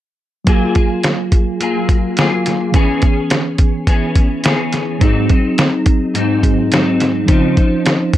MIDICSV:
0, 0, Header, 1, 4, 480
1, 0, Start_track
1, 0, Tempo, 567644
1, 402, Time_signature, 4, 2, 24, 8
1, 6914, End_track
2, 0, Start_track
2, 0, Title_t, "Tine electric piano"
2, 0, Program_c, 0, 4
2, 377, Note_on_c, 0, 54, 62
2, 391, Note_on_c, 0, 58, 55
2, 403, Note_on_c, 0, 65, 57
2, 417, Note_on_c, 0, 68, 66
2, 563, Control_c, 0, 64, 127
2, 2276, Note_off_c, 0, 54, 0
2, 2283, Note_off_c, 0, 58, 0
2, 2289, Note_off_c, 0, 65, 0
2, 2296, Note_off_c, 0, 68, 0
2, 2300, Note_on_c, 0, 52, 61
2, 2314, Note_on_c, 0, 59, 56
2, 2328, Note_on_c, 0, 61, 54
2, 2333, Control_c, 0, 64, 0
2, 2342, Note_on_c, 0, 68, 68
2, 2503, Control_c, 0, 64, 127
2, 4198, Note_off_c, 0, 52, 0
2, 4205, Note_off_c, 0, 59, 0
2, 4212, Note_off_c, 0, 61, 0
2, 4219, Note_off_c, 0, 68, 0
2, 4222, Note_on_c, 0, 54, 64
2, 4240, Note_on_c, 0, 60, 60
2, 4254, Control_c, 0, 64, 0
2, 4254, Note_on_c, 0, 63, 58
2, 4265, Note_on_c, 0, 68, 67
2, 4424, Control_c, 0, 64, 127
2, 5409, Note_off_c, 0, 54, 0
2, 5418, Note_off_c, 0, 60, 0
2, 5425, Note_off_c, 0, 63, 0
2, 5431, Note_off_c, 0, 68, 0
2, 5431, Note_on_c, 0, 54, 47
2, 5437, Note_on_c, 0, 60, 44
2, 5446, Note_on_c, 0, 63, 43
2, 5449, Note_on_c, 0, 68, 52
2, 6134, Note_on_c, 0, 53, 64
2, 6145, Note_on_c, 0, 61, 54
2, 6155, Note_off_c, 0, 63, 0
2, 6157, Note_off_c, 0, 54, 0
2, 6160, Note_off_c, 0, 60, 0
2, 6165, Note_on_c, 0, 63, 59
2, 6166, Note_off_c, 0, 68, 0
2, 6172, Control_c, 0, 64, 0
2, 6174, Note_on_c, 0, 72, 69
2, 6312, Control_c, 0, 64, 127
2, 6914, Note_off_c, 0, 53, 0
2, 6914, Note_off_c, 0, 61, 0
2, 6914, Note_off_c, 0, 63, 0
2, 6914, Note_off_c, 0, 72, 0
2, 6914, End_track
3, 0, Start_track
3, 0, Title_t, "Clean electric guitar"
3, 0, Program_c, 1, 27
3, 399, Note_on_c, 1, 54, 70
3, 404, Note_on_c, 1, 58, 80
3, 410, Note_on_c, 1, 65, 69
3, 413, Note_on_c, 1, 68, 78
3, 629, Note_off_c, 1, 68, 0
3, 639, Note_off_c, 1, 65, 0
3, 639, Note_on_c, 1, 68, 46
3, 640, Note_off_c, 1, 54, 0
3, 643, Note_off_c, 1, 58, 0
3, 649, Note_on_c, 1, 65, 41
3, 653, Note_on_c, 1, 58, 35
3, 1355, Note_off_c, 1, 58, 0
3, 1356, Note_on_c, 1, 54, 59
3, 1357, Note_off_c, 1, 65, 0
3, 1365, Note_on_c, 1, 58, 63
3, 1367, Note_on_c, 1, 65, 60
3, 1372, Note_off_c, 1, 68, 0
3, 1375, Note_on_c, 1, 68, 59
3, 1830, Note_off_c, 1, 54, 0
3, 1836, Note_off_c, 1, 58, 0
3, 1840, Note_on_c, 1, 54, 58
3, 1842, Note_off_c, 1, 65, 0
3, 1846, Note_on_c, 1, 58, 59
3, 1852, Note_on_c, 1, 65, 61
3, 1853, Note_off_c, 1, 68, 0
3, 1856, Note_on_c, 1, 68, 59
3, 2317, Note_off_c, 1, 54, 0
3, 2320, Note_on_c, 1, 52, 76
3, 2321, Note_off_c, 1, 58, 0
3, 2324, Note_on_c, 1, 59, 73
3, 2326, Note_off_c, 1, 65, 0
3, 2327, Note_off_c, 1, 68, 0
3, 2329, Note_on_c, 1, 61, 75
3, 2330, Note_on_c, 1, 68, 85
3, 2543, Note_off_c, 1, 68, 0
3, 2553, Note_off_c, 1, 61, 0
3, 2553, Note_on_c, 1, 68, 49
3, 2561, Note_off_c, 1, 52, 0
3, 2563, Note_off_c, 1, 59, 0
3, 2563, Note_on_c, 1, 61, 43
3, 2572, Note_on_c, 1, 59, 36
3, 3271, Note_off_c, 1, 59, 0
3, 3276, Note_on_c, 1, 52, 58
3, 3277, Note_off_c, 1, 61, 0
3, 3281, Note_on_c, 1, 59, 58
3, 3287, Note_on_c, 1, 61, 58
3, 3288, Note_off_c, 1, 68, 0
3, 3291, Note_on_c, 1, 68, 58
3, 3740, Note_off_c, 1, 52, 0
3, 3750, Note_off_c, 1, 59, 0
3, 3750, Note_on_c, 1, 52, 53
3, 3754, Note_off_c, 1, 61, 0
3, 3760, Note_on_c, 1, 59, 64
3, 3764, Note_on_c, 1, 61, 67
3, 3768, Note_off_c, 1, 68, 0
3, 3771, Note_on_c, 1, 68, 62
3, 4231, Note_on_c, 1, 44, 78
3, 4233, Note_off_c, 1, 52, 0
3, 4236, Note_on_c, 1, 54, 76
3, 4239, Note_off_c, 1, 59, 0
3, 4243, Note_off_c, 1, 61, 0
3, 4243, Note_on_c, 1, 60, 74
3, 4247, Note_on_c, 1, 63, 86
3, 4261, Note_off_c, 1, 68, 0
3, 4463, Note_off_c, 1, 63, 0
3, 4470, Note_off_c, 1, 60, 0
3, 4473, Note_on_c, 1, 63, 49
3, 4477, Note_off_c, 1, 44, 0
3, 4479, Note_off_c, 1, 54, 0
3, 4480, Note_on_c, 1, 60, 43
3, 4490, Note_on_c, 1, 54, 38
3, 5189, Note_off_c, 1, 54, 0
3, 5193, Note_on_c, 1, 44, 66
3, 5199, Note_on_c, 1, 54, 52
3, 5202, Note_off_c, 1, 60, 0
3, 5205, Note_off_c, 1, 63, 0
3, 5205, Note_on_c, 1, 60, 60
3, 5208, Note_on_c, 1, 63, 69
3, 5667, Note_off_c, 1, 44, 0
3, 5676, Note_off_c, 1, 54, 0
3, 5677, Note_on_c, 1, 44, 53
3, 5686, Note_on_c, 1, 54, 55
3, 5689, Note_off_c, 1, 60, 0
3, 5693, Note_on_c, 1, 60, 64
3, 5695, Note_off_c, 1, 63, 0
3, 5698, Note_on_c, 1, 63, 72
3, 6152, Note_on_c, 1, 49, 80
3, 6153, Note_off_c, 1, 54, 0
3, 6156, Note_on_c, 1, 53, 78
3, 6157, Note_off_c, 1, 60, 0
3, 6160, Note_off_c, 1, 44, 0
3, 6160, Note_on_c, 1, 60, 77
3, 6164, Note_off_c, 1, 63, 0
3, 6167, Note_on_c, 1, 63, 92
3, 6387, Note_off_c, 1, 63, 0
3, 6394, Note_off_c, 1, 60, 0
3, 6397, Note_on_c, 1, 63, 48
3, 6398, Note_off_c, 1, 49, 0
3, 6400, Note_off_c, 1, 53, 0
3, 6404, Note_on_c, 1, 60, 38
3, 6412, Note_on_c, 1, 53, 41
3, 6914, Note_off_c, 1, 53, 0
3, 6914, Note_off_c, 1, 60, 0
3, 6914, Note_off_c, 1, 63, 0
3, 6914, End_track
4, 0, Start_track
4, 0, Title_t, "Drums"
4, 396, Note_on_c, 9, 42, 66
4, 398, Note_on_c, 9, 36, 94
4, 481, Note_off_c, 9, 42, 0
4, 483, Note_off_c, 9, 36, 0
4, 635, Note_on_c, 9, 42, 46
4, 641, Note_on_c, 9, 36, 68
4, 720, Note_off_c, 9, 42, 0
4, 725, Note_off_c, 9, 36, 0
4, 875, Note_on_c, 9, 42, 62
4, 882, Note_on_c, 9, 38, 92
4, 960, Note_off_c, 9, 42, 0
4, 967, Note_off_c, 9, 38, 0
4, 1115, Note_on_c, 9, 42, 60
4, 1116, Note_on_c, 9, 36, 72
4, 1200, Note_off_c, 9, 42, 0
4, 1201, Note_off_c, 9, 36, 0
4, 1358, Note_on_c, 9, 42, 74
4, 1443, Note_off_c, 9, 42, 0
4, 1597, Note_on_c, 9, 36, 76
4, 1597, Note_on_c, 9, 42, 62
4, 1681, Note_off_c, 9, 36, 0
4, 1682, Note_off_c, 9, 42, 0
4, 1833, Note_on_c, 9, 42, 71
4, 1849, Note_on_c, 9, 38, 101
4, 1918, Note_off_c, 9, 42, 0
4, 1934, Note_off_c, 9, 38, 0
4, 2079, Note_on_c, 9, 42, 63
4, 2089, Note_on_c, 9, 38, 32
4, 2163, Note_off_c, 9, 42, 0
4, 2173, Note_off_c, 9, 38, 0
4, 2315, Note_on_c, 9, 42, 65
4, 2317, Note_on_c, 9, 36, 98
4, 2400, Note_off_c, 9, 42, 0
4, 2402, Note_off_c, 9, 36, 0
4, 2551, Note_on_c, 9, 42, 51
4, 2559, Note_on_c, 9, 36, 77
4, 2636, Note_off_c, 9, 42, 0
4, 2644, Note_off_c, 9, 36, 0
4, 2793, Note_on_c, 9, 42, 67
4, 2800, Note_on_c, 9, 38, 90
4, 2878, Note_off_c, 9, 42, 0
4, 2885, Note_off_c, 9, 38, 0
4, 3030, Note_on_c, 9, 42, 63
4, 3035, Note_on_c, 9, 36, 71
4, 3115, Note_off_c, 9, 42, 0
4, 3119, Note_off_c, 9, 36, 0
4, 3273, Note_on_c, 9, 36, 79
4, 3274, Note_on_c, 9, 42, 71
4, 3358, Note_off_c, 9, 36, 0
4, 3359, Note_off_c, 9, 42, 0
4, 3513, Note_on_c, 9, 42, 69
4, 3515, Note_on_c, 9, 36, 81
4, 3598, Note_off_c, 9, 42, 0
4, 3599, Note_off_c, 9, 36, 0
4, 3752, Note_on_c, 9, 42, 70
4, 3768, Note_on_c, 9, 38, 99
4, 3837, Note_off_c, 9, 42, 0
4, 3853, Note_off_c, 9, 38, 0
4, 3996, Note_on_c, 9, 42, 63
4, 4006, Note_on_c, 9, 38, 31
4, 4081, Note_off_c, 9, 42, 0
4, 4091, Note_off_c, 9, 38, 0
4, 4238, Note_on_c, 9, 42, 67
4, 4239, Note_on_c, 9, 36, 95
4, 4323, Note_off_c, 9, 42, 0
4, 4324, Note_off_c, 9, 36, 0
4, 4477, Note_on_c, 9, 42, 52
4, 4482, Note_on_c, 9, 36, 71
4, 4562, Note_off_c, 9, 42, 0
4, 4566, Note_off_c, 9, 36, 0
4, 4719, Note_on_c, 9, 42, 69
4, 4726, Note_on_c, 9, 38, 98
4, 4803, Note_off_c, 9, 42, 0
4, 4810, Note_off_c, 9, 38, 0
4, 4954, Note_on_c, 9, 42, 58
4, 4957, Note_on_c, 9, 36, 68
4, 5038, Note_off_c, 9, 42, 0
4, 5042, Note_off_c, 9, 36, 0
4, 5200, Note_on_c, 9, 42, 69
4, 5285, Note_off_c, 9, 42, 0
4, 5440, Note_on_c, 9, 36, 82
4, 5442, Note_on_c, 9, 42, 72
4, 5524, Note_off_c, 9, 36, 0
4, 5527, Note_off_c, 9, 42, 0
4, 5680, Note_on_c, 9, 42, 74
4, 5696, Note_on_c, 9, 38, 99
4, 5764, Note_off_c, 9, 42, 0
4, 5780, Note_off_c, 9, 38, 0
4, 5923, Note_on_c, 9, 42, 65
4, 5933, Note_on_c, 9, 38, 33
4, 6007, Note_off_c, 9, 42, 0
4, 6017, Note_off_c, 9, 38, 0
4, 6158, Note_on_c, 9, 42, 69
4, 6161, Note_on_c, 9, 36, 105
4, 6242, Note_off_c, 9, 42, 0
4, 6245, Note_off_c, 9, 36, 0
4, 6402, Note_on_c, 9, 42, 55
4, 6404, Note_on_c, 9, 36, 69
4, 6487, Note_off_c, 9, 42, 0
4, 6489, Note_off_c, 9, 36, 0
4, 6643, Note_on_c, 9, 42, 63
4, 6650, Note_on_c, 9, 38, 90
4, 6728, Note_off_c, 9, 42, 0
4, 6735, Note_off_c, 9, 38, 0
4, 6879, Note_on_c, 9, 36, 76
4, 6879, Note_on_c, 9, 42, 59
4, 6914, Note_off_c, 9, 36, 0
4, 6914, Note_off_c, 9, 42, 0
4, 6914, End_track
0, 0, End_of_file